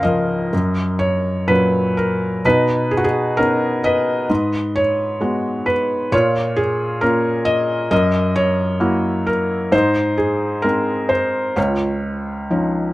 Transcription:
Already playing: C#2 G#2 C#3 G#4 A#4 C#5 F5
0.03 F3 A#4 D#5
0.53 F#2
0.99 C#5
1.48 A#2 F#3 C#4 B4
1.97 A#4
2.45 B2 D#4 B4
2.91 G#4
2.97 F#4
3.04 G#4
3.37 B3 C#4 D#4 A#4
3.84 B4 D#5
4.30 G#2
4.76 C#5
5.21 G#3 B3 F#4
5.66 B4
6.12 A#2 F4 C#5
6.56 G#4
7.01 A#3 C#4 F4 A#4
7.45 D#5
7.91 F#2 A#4 D#5
8.36 C#5
8.80 A#3 E4 F#4
9.27 A#4
9.72 G#2 D#4 C5
10.18 G#4
10.62 G#3 C4 D#4 A#4
11.09 C5
11.56 C#2 F4 C#5
12.50 F3 C#4 D#4

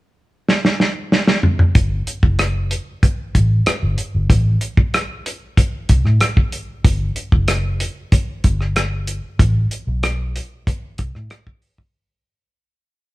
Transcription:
0.49 snare
0.65 snare
0.80 snare
1.12 snare
1.27 snare
1.43 mid tom
1.59 mid tom
1.75 G1, kick, closed hi-hat
2.07 closed hi-hat
2.23 F#1, kick
2.39 cross-stick, closed hi-hat
2.71 closed hi-hat
3.03 kick, closed hi-hat
3.35 A1, kick, closed hi-hat
3.66 muted fingered electric bass stroke, cross-stick, closed hi-hat
3.83 G1
3.98 closed hi-hat
4.15 G1
4.30 A1, kick, closed hi-hat
4.61 closed hi-hat
4.77 kick
4.94 cross-stick, closed hi-hat
5.26 closed hi-hat
5.57 kick, closed hi-hat
5.89 C2, kick, cross-stick, closed hi-hat
6.05 A2, cross-stick
6.20 cross-stick, closed hi-hat
6.37 kick
6.52 closed hi-hat
6.85 G1, kick, closed hi-hat
7.16 closed hi-hat
7.32 F#1, kick
7.48 cross-stick, closed hi-hat
7.80 closed hi-hat
8.12 kick, closed hi-hat
8.44 G1, kick, closed hi-hat
8.61 cross-stick
8.76 cross-stick, closed hi-hat
9.07 closed hi-hat
9.39 A1, kick, closed hi-hat
9.71 closed hi-hat
9.87 B1
10.03 cross-stick, closed hi-hat
10.36 closed hi-hat
10.67 kick, closed hi-hat
10.98 C2, kick, cross-stick, closed hi-hat
11.15 A2, cross-stick
11.30 cross-stick, closed hi-hat
11.47 kick
11.62 open hi-hat
11.78 kick

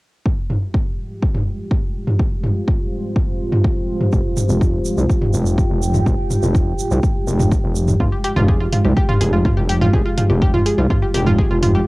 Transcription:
0.26 G#3 F4 G4, kick
0.50 mid tom
0.74 kick
1.19 C5, kick
1.35 mid tom
1.71 kick
2.07 mid tom
2.19 kick
2.43 mid tom
2.68 kick
3.16 kick
3.52 mid tom
3.64 kick
4.01 mid tom
4.13 F1, kick, shaker
4.31 G5
4.37 mid tom, shaker
4.49 F1, shaker
4.61 kick, shaker
4.85 shaker
4.98 C2, shaker
5.10 kick, shaker
5.22 mid tom
5.34 F1, shaker
5.46 shaker
5.58 kick, shaker
5.70 F1
5.82 shaker
5.94 mid tom, shaker
6.06 F1, kick, shaker
6.31 mid tom, shaker
6.43 F1, shaker
6.55 kick, shaker
6.79 shaker
6.91 C2, shaker
7.03 kick, shaker
7.27 F1, shaker
7.39 mid tom, shaker
7.52 kick, shaker
7.64 F1
7.75 shaker
7.88 mid tom, shaker
8.00 F1 G#3 F4 G4, kick, mid tom
8.12 G4
8.24 G4, open hi-hat
8.36 F1 F4, mid tom
8.48 G#4, kick
8.60 F4
8.72 F4, mid tom, open hi-hat
8.85 C2 G4
8.97 G4, kick
9.09 F4, mid tom
9.21 F1 G#4, open hi-hat
9.33 F4
9.45 F4, kick, mid tom
9.57 F1 G4
9.69 G4, open hi-hat
9.81 F4, mid tom
9.93 F1 G#4, kick
10.06 F4
10.18 F4, mid tom, open hi-hat
10.30 F1 G4
10.42 G4, kick
10.54 F4, mid tom
10.66 G#4, open hi-hat
10.78 C2 F4
10.90 F4, kick, mid tom
11.02 G4
11.14 F1 G4, open hi-hat
11.26 F4, mid tom
11.39 G#4, kick
11.51 F1 F4
11.63 F4, mid tom, open hi-hat
11.75 G4

